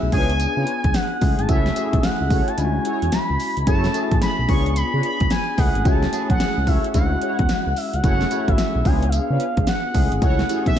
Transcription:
Already playing: tine electric piano A3 C#4 E4 G#4, analog synth lead E5
0.03 analog synth bass B1
0.12 analog synth bass C#2, tine electric piano B3 D4 F4 G#4, analog polysynth D4 F4 B4 C#5, analog synth lead G#5, kick, open hi-hat, tambourine
0.30 closed hi-hat
0.40 closed hi-hat, tambourine
0.57 analog synth bass C#3, analog polysynth D4 F4 B4 C#5
0.67 closed hi-hat
0.84 analog synth bass C#2, kick, closed hi-hat
0.94 analog synth lead F#5, snare, closed hi-hat, tambourine
1.21 analog synth bass C#2, tine electric piano A3 C#4 E4 G#4, kick, open hi-hat, tambourine
1.39 analog synth bass G#1, analog synth lead A5, closed hi-hat
1.49 analog synth bass C#2, analog polysynth E4 F#4 A4 C#5, analog synth lead E5, kick, closed hi-hat, tambourine
1.66 snare
1.75 tine electric piano A3 C#4 E4 G#4, analog polysynth E4 F#4 A4 C#5, closed hi-hat, tambourine
1.93 analog synth bass B1, kick, closed hi-hat
2.03 analog synth lead F#5, snare, closed hi-hat, tambourine
2.21 analog synth bass C#2
2.30 analog polysynth E4 F#4 A4 C#5, kick, open hi-hat, tambourine
2.48 analog synth lead A5, closed hi-hat
2.57 analog synth bass D2, tine electric piano G#3 C#4 E4 F4, analog synth lead G#5, closed hi-hat, tambourine
2.65 tine electric piano F#4
2.85 analog polysynth E4 F#4 G#4 C#5, closed hi-hat
3.02 analog synth bass E2, closed hi-hat
3.12 analog synth bass C#2, analog synth lead B5, snare, closed hi-hat, tambourine
3.30 analog synth bass C#2
3.40 open hi-hat, tambourine
3.57 analog synth bass C#2, closed hi-hat
3.67 analog synth bass F#1, tine electric piano A3 C#4 E4 G#4, analog polysynth E4 F#4 A4 C#5, analog synth lead A5, kick, closed hi-hat, tambourine
3.84 snare
3.94 tine electric piano A3 C#4 E4 G#4, analog polysynth E4 F#4 A4 C#5, closed hi-hat, tambourine
4.11 analog synth bass A1, kick, closed hi-hat
4.22 analog synth lead B5, snare, closed hi-hat, tambourine
4.39 analog synth bass B1
4.49 analog synth bass C#2, tine electric piano B3 D4 F4 G#4, analog polysynth D4 F4 B4 C#5, analog synth lead C#6, kick, open hi-hat, tambourine
4.66 closed hi-hat
4.73 analog synth lead B5 C#6, closed hi-hat, tambourine
4.93 analog synth bass C#3, analog polysynth D4 F4 B4 C#5
5.03 analog synth lead B5, closed hi-hat
5.20 analog synth bass C#2, kick, closed hi-hat
5.30 analog synth lead G#5, snare, closed hi-hat, tambourine
5.58 analog synth bass C#2, tine electric piano A3 C#4 E4 G#4, analog synth lead F#5, kick, open hi-hat, tambourine
5.75 analog synth bass G#1, closed hi-hat
5.85 analog synth bass C#2, analog polysynth E4 F#4 A4 C#5, analog synth lead A5, kick, closed hi-hat, tambourine
6.03 snare
6.12 tine electric piano A3 C#4 E4 G#4, analog polysynth E4 F#4 A4 C#5, closed hi-hat, tambourine
6.30 analog synth bass B1, analog synth lead F#5, kick, closed hi-hat
6.40 snare, closed hi-hat, tambourine
6.58 analog synth bass C#2
6.67 analog polysynth E4 F#4 A4 C#5, analog synth lead E5, kick, open hi-hat, tambourine
6.84 closed hi-hat
6.94 analog synth bass D2, tine electric piano G#3 C#4 E4 F#4, analog synth lead F#5, kick, closed hi-hat, tambourine
7.22 analog polysynth E4 F#4 G#4 C#5, closed hi-hat
7.39 analog synth bass E2, kick, closed hi-hat
7.49 analog synth bass C#2, snare, closed hi-hat, tambourine
7.67 analog synth bass C#2
7.76 analog synth lead E5, open hi-hat, tambourine
7.94 analog synth bass C#2, analog synth lead F#5, closed hi-hat
8.03 analog synth bass F#1, tine electric piano A3 C#4 E4 G#4, analog polysynth E4 F#4 A4 C#5, analog synth lead F#5, kick, closed hi-hat, tambourine
8.21 snare
8.30 tine electric piano A3 C#4 E4 F#4, analog polysynth E4 F#4 A4 C#5, closed hi-hat, tambourine
8.48 analog synth bass A1, analog synth lead E5, kick, closed hi-hat
8.58 snare, closed hi-hat, tambourine
8.75 analog synth bass B1
8.85 analog synth bass C#2, tine electric piano B3 D4 F4 G#4, analog polysynth D4 F4 B4 C#5, analog synth lead G#5, kick, open hi-hat, tambourine
9.02 closed hi-hat
9.09 analog synth lead E5, closed hi-hat, tambourine
9.14 analog synth lead F5
9.30 analog synth bass C#3, analog polysynth D4 F4 B4 C#5
9.40 closed hi-hat
9.57 analog synth bass C#2, kick, closed hi-hat
9.67 analog synth lead F#5, snare, closed hi-hat, tambourine
9.94 analog synth bass C#2, tine electric piano A3 C#4 E4 G#4, kick, open hi-hat, tambourine
10.12 analog synth bass G#1, closed hi-hat
10.22 analog synth bass C#2, analog polysynth E4 F#4 A4 C#5, analog synth lead F#5, kick, closed hi-hat, tambourine
10.39 snare
10.49 tine electric piano A3 C#4 E4 G4, analog polysynth E4 F#4 A4 C#5, closed hi-hat, tambourine
10.56 tine electric piano G#4
10.66 analog synth bass B1, analog synth lead E5, kick, closed hi-hat

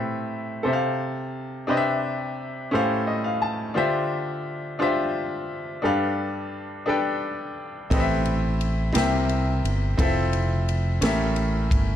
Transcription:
Already playing: grand piano A2 C4 G4 A4 B4 E5
0.63 grand piano C3 A4 C5 E5
0.73 grand piano F5
1.67 grand piano C3 D4 G4 B4 C5 D#5
1.77 grand piano E5
2.71 grand piano A2 C#4 G4 A4 C5 F5
3.07 grand piano D#5
3.24 grand piano F5
3.42 grand piano A5
3.74 grand piano D3 D4 F4 G4 C5 E5
4.79 grand piano D4 F4 G4 C5 E5
5.82 grand piano G2 D4 G4 A4 B4 F5
6.86 grand piano D4 G4 A4 B4 G5
7.90 fingered electric bass A1, grand piano A2 C4 G4 A4 B4 D#5, kick, ride
8.00 grand piano E5
8.25 ride
8.61 ride
8.93 fingered electric bass C2, grand piano C3 C4 E4 G4 A#4 E5, snare, ride
9.29 ride
9.64 fingered electric bass G1, ride
9.97 fingered electric bass F1, grand piano C4 E4 F4 A4 E5, kick, ride
10.33 ride
10.68 ride
11.01 fingered electric bass A1, grand piano A2 C#4 G4 A4 A#4 E5, snare, ride
11.36 ride
11.71 fingered electric bass G1, kick, ride

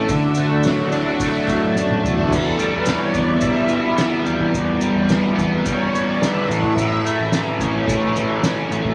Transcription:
Already playing: overdriven electric guitar E3
0.08 picked electric bass D2, overdriven electric guitar D3, string machine D4 F#4 E5, kick, open hi-hat, maracas
0.35 overdriven electric guitar A3, open hi-hat, maracas
0.52 picked electric bass D2
0.63 overdriven electric guitar F#3, snare, open hi-hat, maracas
0.91 picked electric bass D2, overdriven electric guitar D4, open hi-hat, maracas
1.20 overdriven electric guitar A3, kick, open hi-hat, maracas
1.47 picked electric bass A2, overdriven electric guitar F#3, kick, open hi-hat, maracas
1.75 picked electric bass F#2, overdriven electric guitar D4, snare, maracas
1.90 high tom
2.04 picked electric bass E2, overdriven electric guitar A3, mid tom, maracas
2.18 floor tom
2.31 overdriven electric guitar E2, picked electric bass E2, string machine A4, kick, crash, maracas
2.57 overdriven electric guitar G3, crash, maracas
2.72 picked electric bass E2, string machine B4
2.85 overdriven electric guitar E3, snare, crash, maracas
2.90 string machine C#5
3.07 string machine D5
3.13 picked electric bass E2, overdriven electric guitar B3, kick, crash, maracas
3.26 string machine E5
3.40 overdriven electric guitar G3, kick, crash, maracas
3.68 overdriven electric guitar E3, crash, maracas
3.96 overdriven electric guitar B3, snare, crash, maracas
4.24 picked electric bass E2, overdriven electric guitar G3, crash, maracas
4.40 picked electric bass E3, kick
4.53 overdriven electric guitar E2, picked electric bass E2, kick, crash, maracas
4.81 overdriven electric guitar G3, crash, maracas
4.96 picked electric bass E2
5.09 overdriven electric guitar E3, snare, crash, maracas
5.36 picked electric bass E2, overdriven electric guitar B3, kick, crash, maracas
5.65 overdriven electric guitar G3, string machine C#5, kick, crash, maracas
5.92 overdriven electric guitar E3, crash, maracas
6.03 string machine D5
6.20 overdriven electric guitar B3, snare, crash, maracas
6.25 string machine E5
6.46 picked electric bass A1, overdriven electric guitar A2, string machine F#5, crash
6.51 maracas
6.61 picked electric bass A2, string machine E5, kick
6.76 picked electric bass A1, overdriven electric guitar A2, kick, crash, maracas
7.05 overdriven electric guitar A3, crash, maracas
7.19 picked electric bass A1
7.31 overdriven electric guitar E3, snare, crash, maracas
7.59 picked electric bass A1, overdriven electric guitar C#4, kick, crash, maracas
7.87 overdriven electric guitar A3, kick, crash, maracas
8.15 overdriven electric guitar E3, crash, maracas
8.42 overdriven electric guitar C#4, snare, crash, maracas
8.71 picked electric bass A1, overdriven electric guitar A3, crash, maracas
8.85 picked electric bass A1, kick

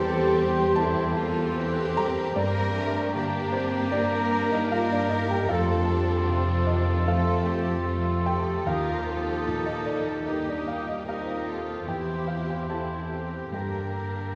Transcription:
Already playing: felt piano E2 G5, double bass section E2, viola section G3, violin section C4, french horn section G4, oboe G4, flute section C6
0.00 felt piano E3, cello section A4
0.39 cello section G4
0.76 felt piano G3 G4 C5 A5, violin section C4, cello section E4, french horn section A4
1.17 violin section A#3, cello section F4
1.55 viola section E3, violin section C4, cello section G4
1.97 viola section G3, french horn section A#4, felt piano A#5
2.36 double bass section G2, felt piano G2 D5, viola section G3, violin section A#3, french horn section D4, oboe G4, cello section A#4, flute section A#5
2.76 violin section A3
3.15 felt piano D3, violin section A#3 D4, viola section A#3, cello section G4
3.52 french horn section C4, felt piano C5
3.90 viola section A#3, felt piano A#3 G4 A#4 D5, french horn section D4, violin section D4, cello section A#4
4.50 french horn section D#4, felt piano D#5
4.69 french horn section F4, cello section A#4, felt piano F5
4.90 french horn section D4, felt piano D5
5.09 french horn section D#4, felt piano D#5
5.27 french horn section G4, felt piano G5
5.49 double bass section F2, felt piano F2 F5, viola section A3, violin section C4 D4, french horn section F4, cello section A4, oboe A4, flute section C6
5.88 viola section G3
6.28 felt piano C3, viola section F3, cello section F4
6.67 french horn section D#3, felt piano D#5
7.07 violin section A3 C4, felt piano A3 A4 C5 F5, viola section A3, french horn section F4, cello section A4
7.47 cello section G4
7.86 viola section G3, violin section A3 C4, cello section F4
8.26 viola section F3, french horn section G4, cello section A4, felt piano G5
8.66 felt piano D#2 F5, double bass section D#2, viola section F3, violin section A#3 F4, french horn section F4, oboe G4, cello section A#4, flute section D#6
9.07 violin section C4, cello section A4
9.45 felt piano A#2, violin section A#3 D#4
9.66 french horn section D#4, felt piano D#5
9.86 french horn section D#4, felt piano D5
10.25 viola section G3, violin section A#3 D#4, felt piano A#3 G4 D#5, french horn section D#4, oboe G4, cello section G4, flute section D#6
10.47 french horn section D4, felt piano D5
10.67 french horn section F4, felt piano F5
10.88 french horn section D#4, felt piano D#5
11.07 violin section C4 D#4, french horn section F4, oboe G4, cello section A#4, felt piano F5, flute section D#6
11.48 violin section F4, cello section A4
11.87 double bass section E2, felt piano E2 G5, viola section E3, violin section C4 E4, cello section G4, french horn section G4, oboe G4, flute section C6
12.28 french horn section F4, felt piano F5
12.49 french horn section G4, felt piano G5
12.68 violin section E4, cello section E4, felt piano G4 C5 A5, french horn section A4
13.12 violin section C4, cello section G4
13.52 felt piano G2 G5, double bass section G2, viola section D3, violin section A#3 D4, french horn section G4, oboe G4, cello section A#4, flute section A#5

